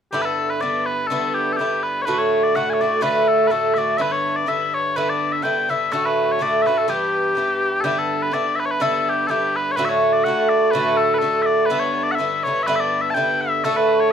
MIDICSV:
0, 0, Header, 1, 3, 480
1, 0, Start_track
1, 0, Tempo, 482703
1, 126, Time_signature, 2, 2, 24, 8
1, 14046, End_track
2, 0, Start_track
2, 0, Title_t, "Bagpipes"
2, 0, Program_c, 0, 109
2, 121, Note_on_c, 0, 67, 81
2, 216, Note_off_c, 0, 67, 0
2, 216, Note_on_c, 0, 71, 65
2, 252, Note_off_c, 0, 71, 0
2, 252, Note_on_c, 0, 69, 65
2, 498, Note_off_c, 0, 69, 0
2, 498, Note_on_c, 0, 71, 58
2, 605, Note_off_c, 0, 71, 0
2, 605, Note_on_c, 0, 74, 76
2, 854, Note_off_c, 0, 74, 0
2, 854, Note_on_c, 0, 71, 73
2, 1065, Note_off_c, 0, 71, 0
2, 1065, Note_on_c, 0, 69, 79
2, 1334, Note_off_c, 0, 69, 0
2, 1334, Note_on_c, 0, 67, 71
2, 1516, Note_off_c, 0, 67, 0
2, 1516, Note_on_c, 0, 69, 69
2, 1555, Note_off_c, 0, 69, 0
2, 1555, Note_on_c, 0, 67, 69
2, 1820, Note_off_c, 0, 67, 0
2, 1820, Note_on_c, 0, 71, 64
2, 2007, Note_off_c, 0, 71, 0
2, 2007, Note_on_c, 0, 73, 75
2, 2041, Note_on_c, 0, 71, 75
2, 2042, Note_off_c, 0, 73, 0
2, 2173, Note_off_c, 0, 71, 0
2, 2173, Note_on_c, 0, 73, 58
2, 2418, Note_off_c, 0, 73, 0
2, 2418, Note_on_c, 0, 74, 75
2, 2543, Note_off_c, 0, 74, 0
2, 2543, Note_on_c, 0, 78, 82
2, 2682, Note_off_c, 0, 78, 0
2, 2682, Note_on_c, 0, 80, 50
2, 2719, Note_off_c, 0, 80, 0
2, 2719, Note_on_c, 0, 73, 50
2, 2791, Note_off_c, 0, 73, 0
2, 2791, Note_on_c, 0, 74, 76
2, 3005, Note_off_c, 0, 74, 0
2, 3005, Note_on_c, 0, 71, 85
2, 3262, Note_off_c, 0, 71, 0
2, 3262, Note_on_c, 0, 69, 75
2, 3455, Note_off_c, 0, 69, 0
2, 3455, Note_on_c, 0, 71, 72
2, 3493, Note_off_c, 0, 71, 0
2, 3493, Note_on_c, 0, 69, 72
2, 3720, Note_off_c, 0, 69, 0
2, 3721, Note_on_c, 0, 76, 69
2, 3760, Note_off_c, 0, 76, 0
2, 3760, Note_on_c, 0, 74, 69
2, 3953, Note_off_c, 0, 74, 0
2, 3953, Note_on_c, 0, 76, 86
2, 3990, Note_off_c, 0, 76, 0
2, 3990, Note_on_c, 0, 71, 86
2, 4095, Note_off_c, 0, 71, 0
2, 4095, Note_on_c, 0, 73, 73
2, 4334, Note_off_c, 0, 73, 0
2, 4334, Note_on_c, 0, 74, 74
2, 4459, Note_off_c, 0, 74, 0
2, 4459, Note_on_c, 0, 76, 86
2, 4715, Note_off_c, 0, 76, 0
2, 4715, Note_on_c, 0, 73, 77
2, 4934, Note_off_c, 0, 73, 0
2, 4934, Note_on_c, 0, 71, 75
2, 5065, Note_off_c, 0, 71, 0
2, 5065, Note_on_c, 0, 74, 72
2, 5294, Note_off_c, 0, 74, 0
2, 5294, Note_on_c, 0, 76, 75
2, 5401, Note_off_c, 0, 76, 0
2, 5401, Note_on_c, 0, 79, 76
2, 5668, Note_off_c, 0, 79, 0
2, 5668, Note_on_c, 0, 76, 84
2, 5889, Note_off_c, 0, 76, 0
2, 5889, Note_on_c, 0, 69, 78
2, 6024, Note_off_c, 0, 69, 0
2, 6024, Note_on_c, 0, 71, 62
2, 6282, Note_off_c, 0, 71, 0
2, 6282, Note_on_c, 0, 73, 79
2, 6384, Note_off_c, 0, 73, 0
2, 6384, Note_on_c, 0, 74, 86
2, 6585, Note_off_c, 0, 74, 0
2, 6585, Note_on_c, 0, 76, 76
2, 6627, Note_off_c, 0, 76, 0
2, 6627, Note_on_c, 0, 71, 76
2, 6740, Note_off_c, 0, 71, 0
2, 6740, Note_on_c, 0, 69, 62
2, 6857, Note_off_c, 0, 69, 0
2, 6857, Note_on_c, 0, 67, 71
2, 7760, Note_off_c, 0, 67, 0
2, 7760, Note_on_c, 0, 69, 75
2, 7796, Note_off_c, 0, 69, 0
2, 7796, Note_on_c, 0, 67, 75
2, 7939, Note_off_c, 0, 67, 0
2, 7939, Note_on_c, 0, 69, 57
2, 8179, Note_off_c, 0, 69, 0
2, 8179, Note_on_c, 0, 71, 68
2, 8286, Note_off_c, 0, 71, 0
2, 8286, Note_on_c, 0, 74, 71
2, 8510, Note_off_c, 0, 74, 0
2, 8510, Note_on_c, 0, 76, 67
2, 8547, Note_off_c, 0, 76, 0
2, 8547, Note_on_c, 0, 71, 67
2, 8608, Note_off_c, 0, 71, 0
2, 8608, Note_on_c, 0, 73, 57
2, 8659, Note_off_c, 0, 73, 0
2, 8659, Note_on_c, 0, 71, 73
2, 8767, Note_off_c, 0, 71, 0
2, 8767, Note_on_c, 0, 69, 78
2, 9040, Note_off_c, 0, 69, 0
2, 9040, Note_on_c, 0, 67, 74
2, 9217, Note_off_c, 0, 67, 0
2, 9217, Note_on_c, 0, 69, 80
2, 9250, Note_off_c, 0, 69, 0
2, 9250, Note_on_c, 0, 67, 80
2, 9508, Note_off_c, 0, 67, 0
2, 9508, Note_on_c, 0, 71, 78
2, 9662, Note_off_c, 0, 71, 0
2, 9662, Note_on_c, 0, 73, 96
2, 9705, Note_off_c, 0, 73, 0
2, 9705, Note_on_c, 0, 71, 96
2, 9795, Note_off_c, 0, 71, 0
2, 9795, Note_on_c, 0, 76, 62
2, 9835, Note_off_c, 0, 76, 0
2, 9835, Note_on_c, 0, 73, 62
2, 10069, Note_off_c, 0, 73, 0
2, 10069, Note_on_c, 0, 74, 70
2, 10184, Note_off_c, 0, 74, 0
2, 10184, Note_on_c, 0, 78, 84
2, 10432, Note_off_c, 0, 78, 0
2, 10432, Note_on_c, 0, 74, 69
2, 10649, Note_off_c, 0, 74, 0
2, 10649, Note_on_c, 0, 71, 95
2, 10910, Note_off_c, 0, 71, 0
2, 10910, Note_on_c, 0, 69, 84
2, 11081, Note_off_c, 0, 69, 0
2, 11081, Note_on_c, 0, 71, 81
2, 11122, Note_off_c, 0, 71, 0
2, 11122, Note_on_c, 0, 69, 81
2, 11359, Note_off_c, 0, 69, 0
2, 11359, Note_on_c, 0, 76, 72
2, 11396, Note_off_c, 0, 76, 0
2, 11396, Note_on_c, 0, 74, 72
2, 11591, Note_off_c, 0, 74, 0
2, 11591, Note_on_c, 0, 71, 81
2, 11730, Note_off_c, 0, 71, 0
2, 11730, Note_on_c, 0, 73, 61
2, 11963, Note_off_c, 0, 73, 0
2, 11963, Note_on_c, 0, 74, 81
2, 12047, Note_off_c, 0, 74, 0
2, 12047, Note_on_c, 0, 78, 76
2, 12084, Note_off_c, 0, 78, 0
2, 12084, Note_on_c, 0, 76, 76
2, 12364, Note_off_c, 0, 76, 0
2, 12364, Note_on_c, 0, 73, 74
2, 12559, Note_off_c, 0, 73, 0
2, 12559, Note_on_c, 0, 76, 99
2, 12594, Note_off_c, 0, 76, 0
2, 12594, Note_on_c, 0, 71, 99
2, 12685, Note_off_c, 0, 71, 0
2, 12685, Note_on_c, 0, 76, 72
2, 12730, Note_off_c, 0, 76, 0
2, 12730, Note_on_c, 0, 74, 72
2, 12941, Note_off_c, 0, 74, 0
2, 12941, Note_on_c, 0, 76, 74
2, 13031, Note_off_c, 0, 76, 0
2, 13031, Note_on_c, 0, 81, 96
2, 13070, Note_off_c, 0, 81, 0
2, 13070, Note_on_c, 0, 79, 96
2, 13338, Note_off_c, 0, 79, 0
2, 13338, Note_on_c, 0, 76, 85
2, 13567, Note_off_c, 0, 76, 0
2, 13567, Note_on_c, 0, 69, 78
2, 13690, Note_off_c, 0, 69, 0
2, 13690, Note_on_c, 0, 71, 70
2, 13925, Note_off_c, 0, 71, 0
2, 13925, Note_on_c, 0, 73, 86
2, 14029, Note_off_c, 0, 73, 0
2, 14046, End_track
3, 0, Start_track
3, 0, Title_t, "Bouzouki"
3, 0, Program_c, 1, 25
3, 124, Note_on_c, 1, 43, 68
3, 131, Note_on_c, 1, 50, 67
3, 138, Note_on_c, 1, 59, 72
3, 141, Note_on_c, 1, 64, 82
3, 590, Note_off_c, 1, 43, 0
3, 602, Note_on_c, 1, 43, 52
3, 610, Note_off_c, 1, 59, 0
3, 610, Note_off_c, 1, 64, 0
3, 613, Note_off_c, 1, 50, 0
3, 617, Note_on_c, 1, 50, 47
3, 622, Note_on_c, 1, 59, 56
3, 622, Note_on_c, 1, 64, 50
3, 1083, Note_off_c, 1, 43, 0
3, 1095, Note_on_c, 1, 43, 66
3, 1096, Note_off_c, 1, 59, 0
3, 1098, Note_off_c, 1, 50, 0
3, 1099, Note_off_c, 1, 64, 0
3, 1101, Note_on_c, 1, 50, 63
3, 1107, Note_on_c, 1, 59, 81
3, 1115, Note_on_c, 1, 64, 71
3, 1570, Note_off_c, 1, 43, 0
3, 1581, Note_on_c, 1, 43, 49
3, 1582, Note_off_c, 1, 59, 0
3, 1586, Note_off_c, 1, 64, 0
3, 1587, Note_off_c, 1, 50, 0
3, 1591, Note_on_c, 1, 50, 49
3, 1598, Note_on_c, 1, 59, 48
3, 1602, Note_on_c, 1, 64, 53
3, 2053, Note_off_c, 1, 43, 0
3, 2057, Note_on_c, 1, 45, 69
3, 2060, Note_off_c, 1, 50, 0
3, 2063, Note_off_c, 1, 59, 0
3, 2064, Note_on_c, 1, 50, 72
3, 2066, Note_off_c, 1, 64, 0
3, 2067, Note_on_c, 1, 57, 72
3, 2070, Note_on_c, 1, 66, 78
3, 2523, Note_off_c, 1, 45, 0
3, 2532, Note_off_c, 1, 50, 0
3, 2535, Note_on_c, 1, 45, 49
3, 2536, Note_on_c, 1, 50, 52
3, 2539, Note_off_c, 1, 57, 0
3, 2544, Note_off_c, 1, 66, 0
3, 2550, Note_on_c, 1, 57, 58
3, 2557, Note_on_c, 1, 66, 58
3, 2780, Note_off_c, 1, 45, 0
3, 2784, Note_off_c, 1, 50, 0
3, 2792, Note_off_c, 1, 57, 0
3, 2792, Note_on_c, 1, 45, 44
3, 2796, Note_on_c, 1, 50, 50
3, 2803, Note_off_c, 1, 66, 0
3, 2804, Note_on_c, 1, 57, 45
3, 2815, Note_on_c, 1, 66, 52
3, 2981, Note_off_c, 1, 45, 0
3, 2989, Note_off_c, 1, 50, 0
3, 2993, Note_on_c, 1, 45, 67
3, 2994, Note_off_c, 1, 57, 0
3, 2995, Note_off_c, 1, 66, 0
3, 3001, Note_on_c, 1, 50, 72
3, 3006, Note_on_c, 1, 57, 79
3, 3007, Note_on_c, 1, 66, 79
3, 3471, Note_off_c, 1, 45, 0
3, 3482, Note_off_c, 1, 57, 0
3, 3483, Note_on_c, 1, 45, 50
3, 3485, Note_off_c, 1, 50, 0
3, 3489, Note_on_c, 1, 50, 51
3, 3491, Note_off_c, 1, 66, 0
3, 3494, Note_on_c, 1, 57, 58
3, 3503, Note_on_c, 1, 66, 53
3, 3727, Note_off_c, 1, 45, 0
3, 3735, Note_off_c, 1, 50, 0
3, 3739, Note_on_c, 1, 45, 42
3, 3746, Note_off_c, 1, 57, 0
3, 3747, Note_on_c, 1, 50, 49
3, 3751, Note_off_c, 1, 66, 0
3, 3758, Note_on_c, 1, 57, 44
3, 3763, Note_on_c, 1, 66, 50
3, 3957, Note_off_c, 1, 45, 0
3, 3958, Note_off_c, 1, 50, 0
3, 3961, Note_on_c, 1, 43, 70
3, 3964, Note_off_c, 1, 57, 0
3, 3968, Note_on_c, 1, 59, 61
3, 3970, Note_on_c, 1, 50, 68
3, 3971, Note_off_c, 1, 66, 0
3, 3975, Note_on_c, 1, 64, 68
3, 4426, Note_off_c, 1, 43, 0
3, 4437, Note_off_c, 1, 59, 0
3, 4438, Note_on_c, 1, 43, 46
3, 4440, Note_off_c, 1, 50, 0
3, 4444, Note_off_c, 1, 64, 0
3, 4444, Note_on_c, 1, 50, 46
3, 4448, Note_on_c, 1, 59, 56
3, 4456, Note_on_c, 1, 64, 60
3, 4921, Note_off_c, 1, 43, 0
3, 4925, Note_off_c, 1, 50, 0
3, 4933, Note_on_c, 1, 43, 57
3, 4934, Note_off_c, 1, 59, 0
3, 4937, Note_off_c, 1, 64, 0
3, 4937, Note_on_c, 1, 50, 70
3, 4948, Note_on_c, 1, 64, 63
3, 4950, Note_on_c, 1, 59, 78
3, 5381, Note_off_c, 1, 43, 0
3, 5389, Note_off_c, 1, 50, 0
3, 5393, Note_on_c, 1, 43, 49
3, 5401, Note_on_c, 1, 50, 58
3, 5403, Note_off_c, 1, 59, 0
3, 5406, Note_off_c, 1, 64, 0
3, 5415, Note_on_c, 1, 59, 60
3, 5418, Note_on_c, 1, 64, 52
3, 5644, Note_off_c, 1, 43, 0
3, 5651, Note_off_c, 1, 50, 0
3, 5656, Note_on_c, 1, 43, 41
3, 5660, Note_off_c, 1, 59, 0
3, 5663, Note_on_c, 1, 50, 49
3, 5665, Note_off_c, 1, 64, 0
3, 5672, Note_on_c, 1, 59, 44
3, 5677, Note_on_c, 1, 64, 50
3, 5878, Note_off_c, 1, 43, 0
3, 5881, Note_off_c, 1, 50, 0
3, 5882, Note_on_c, 1, 45, 75
3, 5893, Note_on_c, 1, 50, 66
3, 5894, Note_off_c, 1, 59, 0
3, 5897, Note_off_c, 1, 64, 0
3, 5901, Note_on_c, 1, 66, 70
3, 5903, Note_on_c, 1, 57, 77
3, 6343, Note_off_c, 1, 45, 0
3, 6355, Note_on_c, 1, 45, 53
3, 6356, Note_off_c, 1, 50, 0
3, 6364, Note_off_c, 1, 57, 0
3, 6367, Note_off_c, 1, 66, 0
3, 6368, Note_on_c, 1, 50, 54
3, 6376, Note_on_c, 1, 57, 61
3, 6379, Note_on_c, 1, 66, 59
3, 6611, Note_off_c, 1, 45, 0
3, 6622, Note_off_c, 1, 50, 0
3, 6623, Note_on_c, 1, 45, 45
3, 6624, Note_off_c, 1, 57, 0
3, 6633, Note_off_c, 1, 66, 0
3, 6634, Note_on_c, 1, 50, 44
3, 6636, Note_on_c, 1, 57, 50
3, 6645, Note_on_c, 1, 66, 54
3, 6836, Note_off_c, 1, 45, 0
3, 6837, Note_off_c, 1, 50, 0
3, 6840, Note_on_c, 1, 43, 72
3, 6841, Note_on_c, 1, 52, 70
3, 6842, Note_off_c, 1, 66, 0
3, 6844, Note_off_c, 1, 57, 0
3, 6846, Note_on_c, 1, 67, 68
3, 6848, Note_on_c, 1, 59, 73
3, 7298, Note_off_c, 1, 43, 0
3, 7310, Note_on_c, 1, 43, 46
3, 7322, Note_off_c, 1, 52, 0
3, 7325, Note_off_c, 1, 59, 0
3, 7326, Note_on_c, 1, 52, 52
3, 7329, Note_on_c, 1, 59, 56
3, 7335, Note_off_c, 1, 67, 0
3, 7339, Note_on_c, 1, 67, 56
3, 7783, Note_off_c, 1, 43, 0
3, 7786, Note_off_c, 1, 59, 0
3, 7792, Note_off_c, 1, 52, 0
3, 7795, Note_on_c, 1, 43, 73
3, 7796, Note_on_c, 1, 50, 79
3, 7798, Note_on_c, 1, 59, 66
3, 7807, Note_off_c, 1, 67, 0
3, 7811, Note_on_c, 1, 64, 81
3, 8257, Note_off_c, 1, 43, 0
3, 8269, Note_on_c, 1, 43, 52
3, 8277, Note_off_c, 1, 59, 0
3, 8280, Note_off_c, 1, 64, 0
3, 8281, Note_off_c, 1, 50, 0
3, 8285, Note_on_c, 1, 50, 54
3, 8289, Note_on_c, 1, 59, 50
3, 8292, Note_on_c, 1, 64, 61
3, 8739, Note_off_c, 1, 43, 0
3, 8746, Note_off_c, 1, 59, 0
3, 8751, Note_on_c, 1, 43, 74
3, 8756, Note_off_c, 1, 50, 0
3, 8756, Note_off_c, 1, 64, 0
3, 8758, Note_on_c, 1, 59, 78
3, 8760, Note_on_c, 1, 50, 70
3, 8768, Note_on_c, 1, 64, 80
3, 9221, Note_off_c, 1, 43, 0
3, 9232, Note_off_c, 1, 59, 0
3, 9233, Note_on_c, 1, 43, 56
3, 9238, Note_off_c, 1, 50, 0
3, 9242, Note_on_c, 1, 50, 52
3, 9244, Note_on_c, 1, 59, 56
3, 9246, Note_off_c, 1, 64, 0
3, 9257, Note_on_c, 1, 64, 63
3, 9713, Note_off_c, 1, 43, 0
3, 9717, Note_on_c, 1, 45, 71
3, 9723, Note_off_c, 1, 50, 0
3, 9723, Note_off_c, 1, 59, 0
3, 9727, Note_on_c, 1, 50, 72
3, 9729, Note_off_c, 1, 64, 0
3, 9731, Note_on_c, 1, 57, 91
3, 9737, Note_on_c, 1, 66, 77
3, 10188, Note_off_c, 1, 45, 0
3, 10200, Note_on_c, 1, 45, 57
3, 10201, Note_off_c, 1, 50, 0
3, 10205, Note_on_c, 1, 50, 61
3, 10206, Note_off_c, 1, 57, 0
3, 10209, Note_off_c, 1, 66, 0
3, 10224, Note_on_c, 1, 57, 58
3, 10226, Note_on_c, 1, 66, 60
3, 10662, Note_off_c, 1, 45, 0
3, 10674, Note_on_c, 1, 45, 75
3, 10675, Note_off_c, 1, 57, 0
3, 10678, Note_off_c, 1, 66, 0
3, 10683, Note_off_c, 1, 50, 0
3, 10687, Note_on_c, 1, 50, 69
3, 10687, Note_on_c, 1, 57, 87
3, 10690, Note_on_c, 1, 66, 79
3, 11140, Note_off_c, 1, 45, 0
3, 11149, Note_off_c, 1, 57, 0
3, 11152, Note_on_c, 1, 45, 50
3, 11155, Note_off_c, 1, 50, 0
3, 11159, Note_on_c, 1, 50, 59
3, 11161, Note_on_c, 1, 57, 58
3, 11165, Note_off_c, 1, 66, 0
3, 11176, Note_on_c, 1, 66, 61
3, 11627, Note_off_c, 1, 45, 0
3, 11631, Note_on_c, 1, 43, 61
3, 11633, Note_off_c, 1, 50, 0
3, 11636, Note_off_c, 1, 57, 0
3, 11637, Note_on_c, 1, 50, 77
3, 11639, Note_off_c, 1, 66, 0
3, 11640, Note_on_c, 1, 59, 77
3, 11643, Note_on_c, 1, 64, 80
3, 12104, Note_off_c, 1, 43, 0
3, 12116, Note_on_c, 1, 43, 48
3, 12118, Note_off_c, 1, 59, 0
3, 12121, Note_off_c, 1, 64, 0
3, 12122, Note_off_c, 1, 50, 0
3, 12126, Note_on_c, 1, 50, 62
3, 12130, Note_on_c, 1, 59, 65
3, 12137, Note_on_c, 1, 64, 62
3, 12371, Note_off_c, 1, 43, 0
3, 12383, Note_off_c, 1, 50, 0
3, 12383, Note_on_c, 1, 43, 46
3, 12385, Note_off_c, 1, 59, 0
3, 12389, Note_off_c, 1, 64, 0
3, 12393, Note_on_c, 1, 50, 50
3, 12400, Note_on_c, 1, 59, 56
3, 12410, Note_on_c, 1, 64, 50
3, 12591, Note_off_c, 1, 43, 0
3, 12593, Note_off_c, 1, 59, 0
3, 12596, Note_off_c, 1, 50, 0
3, 12603, Note_on_c, 1, 43, 70
3, 12605, Note_on_c, 1, 59, 74
3, 12608, Note_off_c, 1, 64, 0
3, 12608, Note_on_c, 1, 50, 75
3, 12620, Note_on_c, 1, 64, 73
3, 13060, Note_off_c, 1, 43, 0
3, 13072, Note_on_c, 1, 43, 57
3, 13076, Note_off_c, 1, 50, 0
3, 13081, Note_off_c, 1, 59, 0
3, 13088, Note_on_c, 1, 50, 61
3, 13091, Note_off_c, 1, 64, 0
3, 13093, Note_on_c, 1, 59, 60
3, 13102, Note_on_c, 1, 64, 59
3, 13558, Note_off_c, 1, 43, 0
3, 13559, Note_off_c, 1, 50, 0
3, 13566, Note_on_c, 1, 45, 67
3, 13568, Note_off_c, 1, 59, 0
3, 13571, Note_on_c, 1, 50, 72
3, 13573, Note_off_c, 1, 64, 0
3, 13574, Note_on_c, 1, 57, 87
3, 13581, Note_on_c, 1, 66, 93
3, 14039, Note_off_c, 1, 45, 0
3, 14043, Note_off_c, 1, 50, 0
3, 14046, Note_off_c, 1, 57, 0
3, 14046, Note_off_c, 1, 66, 0
3, 14046, End_track
0, 0, End_of_file